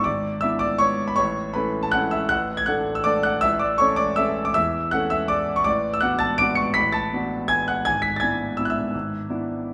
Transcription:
grand piano
0.04 G#1 D5 D6
0.41 B3 D4 E4 E5 E6
0.59 D5 D6
0.78 C#5 C#6
1.08 B5
1.16 A1 C#5 C#6
1.54 A3 C#4 E4 B4 B5
1.83 A5
1.92 A3 C#4 E4 F#5 F#6
2.11 E5 E6
2.29 A1 F#5 F#6
2.57 G#6
2.66 A3 D4 A4 F#5 F#6
2.95 E6
3.04 A3 D4 A4 D5 D6
3.23 F#5 F#6
3.41 A1 E5 E6
3.59 D5 D6
3.78 A3 C#4 A4 C#5 C#6
3.96 D5 D6
4.16 A3 C#4 A4 E5 E6
4.45 D6
4.54 E2 E5 E6
4.91 A3 C#4 A4 F#5 F#6
5.10 E5 E6
5.28 D5 D6
5.56 C#6
5.64 A1 D5 D6
5.94 E6
6.01 B3 D4 F#4 F#5 F#6
6.19 A5 A6
6.38 B3 D4 F#4 D6 D7
6.55 C#6 C#7
6.74 A1 B5 B6
6.92 A5 A6
7.13 B3 D4 F#4
7.48 G#5 G#6
7.68 F#5 F#6
7.85 G#1 G#5 G#6
8.02 B6
8.16 G#6 A6
8.21 B3 D4 E4 G#5
8.57 B3 D4 E4 E6
8.65 F#6
8.70 E5 E6
8.95 G#1
9.30 B3 D4 E4

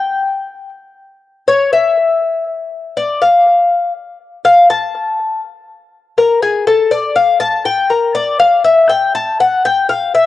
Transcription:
cuban tres
Already playing: G5
1.48 C#5
1.73 E5
2.97 D5
3.22 F5
4.45 F5
4.70 A5
6.18 A#4
6.42 G#4
6.67 A4
6.91 D5
7.16 F5
7.40 A5
7.65 G5
7.90 A#4
8.15 D5
8.40 F5
8.64 E5
8.89 G5
9.15 A5
9.40 F#5
9.65 G5
9.89 F5
10.15 E5

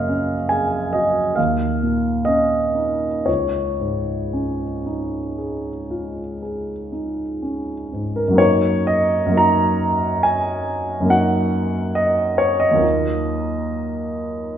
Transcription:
grand piano
Already playing: F#2 C#3 A#3 D#5 F5
0.09 C#4
0.49 G#4 G#5
0.93 F#4 D#5
1.36 D#2 F5
1.83 A#2
2.25 C#4 D#5
2.75 D#4
3.26 C#2 C#5
3.80 G#2
4.33 C#4
4.86 D#4
5.38 G#4
5.91 F4
6.42 G#4
6.92 D#4
7.42 C#4
7.93 G#2
8.16 A#4
8.28 F#2 F#3
8.33 A#3 D#4
8.38 F#4 C#5
8.87 D#5
9.26 F#2 F#3
9.31 A#3 D#4
9.36 F#4 A#5
10.23 G#5
11.00 F#2 F#3
11.04 A#3 D#4
11.10 F#4 F#5
11.95 D#5
12.38 C#5
12.60 D#5
12.71 D#2 F#3
12.76 A#3 D#4
12.81 F4

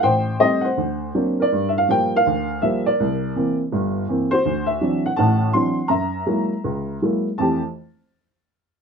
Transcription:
upright piano
0.03 A1 C5 G5
0.40 G3 A3 C4 D#5
0.61 C5 F#5
0.77 D2
1.15 F#3 A#3 C4 D4
1.40 A#4 D5
1.52 G2
1.69 E5
1.78 F5
1.89 F3 G3 A#3 G5
2.16 A#4 F5
2.27 D2
2.62 F3 G3 A#3 E5
2.86 A#4 D5
3.00 C2
3.36 E3 A#3 C4
3.72 G1 G2
4.09 E3 A#3 C4
4.31 F#4 C5
4.45 D2
4.66 E5
4.81 E3 F#3 C4 D4
5.06 F#5
5.16 A1 A2 F#5 A5
5.53 E3 F#3 C4 D4 C6
5.88 F#2 E5 A#5
6.26 F#3 G#3 A#3 E4
6.64 C#2
7.02 F#3 G#3 A#3 E4
7.38 F2 E3 A3 G4 A5

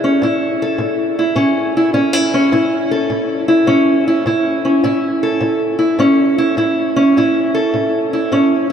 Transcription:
steel-string acoustic guitar
Already playing: A2 E4
0.04 C#4
0.22 A2 E4
0.62 A4
0.78 A2
1.19 E4
1.36 A2 C#4
1.77 E4
1.94 A2 C#4
2.13 E4
2.34 C#4
2.52 A2 E4
2.91 A4
3.10 A2
3.48 E4
3.67 A2 C#4
4.08 E4
4.26 A2 E4
4.65 C#4
4.84 A2 E4
5.23 A4
5.40 A2
5.79 E4
5.99 A2 C#4
6.38 E4
6.57 A2 E4
6.96 C#4
7.17 A2 E4
7.55 A4
7.74 A2
8.13 E4
8.32 A2 C#4

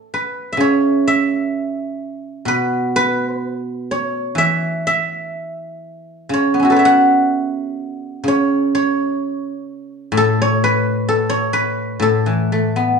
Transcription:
guzheng
Already playing: A4 B4 C#5 E5 F#5
0.14 B4
0.53 E5
0.57 C#3 C#5
1.07 E5
2.45 B2 B4
2.96 B4
3.91 C#5
4.35 E3 E5
4.87 E5
6.29 C#3
6.34 C#5
6.54 B3
6.60 C#4 E4
6.65 F#4
6.70 A4 B4
6.76 C#5 E5
6.85 F#5
8.24 C#3
8.28 C#5
8.75 C#5
10.12 A2
10.17 A4
10.42 C#5
10.64 B4
11.09 A4
11.29 C#5
11.53 B4
12.00 A2 A4
12.26 E3
12.52 A3
12.76 B3

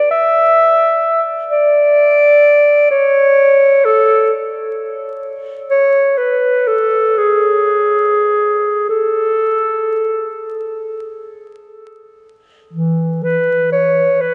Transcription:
clarinet
0.11 E5
1.51 D5
2.91 C#5
3.85 A4
5.70 C#5
6.17 B4
6.67 A4
7.17 G#4
8.89 A4
12.73 E3
13.23 B4
13.72 C#5
14.21 B4

